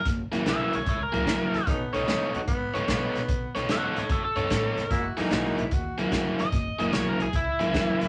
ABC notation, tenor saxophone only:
X:1
M:4/4
L:1/16
Q:"Swing" 1/4=148
K:F#mix
V:1 name="Tenor saxophone"
z16 | B,2 C4 F2 B,4 B,4- | B,3 z12 z | F2 =A2 F2 E2 F2 F4 z2 |
z16 |]